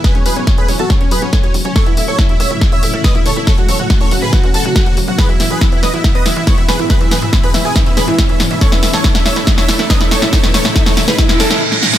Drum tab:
HH |xxo-xxoxxxoxxxox|xxoxxxoxxxoxxxox|xxoxxxo-xxoxxxo-|xxoxxxoxxxoxxxox|
SD |o---o---o---o---|o---o---o---o---|o---o---o---o---|o-o-o-o-o-o-o-o-|
BD |o---o---o---o---|o---o---o---o---|o---o---o---o---|o---o---o---o---|

HH |xxoxxxoxxxoxxxox|xxo-xxoxxxo-xxox|xxoxxxoxxxox----|
SD |o-o-o-o-o-o-o-o-|oooooooooooooooo|oooooooooooo-ooo|
BD |o---o---o---o---|o---o---o---o---|o---o---o-------|